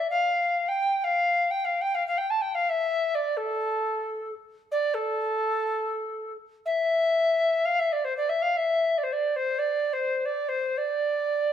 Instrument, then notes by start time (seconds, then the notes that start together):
recorder
0.10 F5
0.68 G5
1.04 F5
1.50 G5
1.64 F5
1.81 G5
1.94 F5
2.07 F5
2.17 G5
2.30 A5
2.41 G5
2.55 F5
2.69 E5
3.15 D5
3.37 A4
4.71 D5
4.94 A4
6.65 E5
7.65 F5
7.79 E5
7.92 D5
8.04 C5
8.17 D5
8.29 E5
8.42 F5
8.56 E5
8.98 D5
9.03 C5
9.12 D5
9.36 C5
9.58 D5
9.93 C5
10.25 D5
10.48 C5
10.77 D5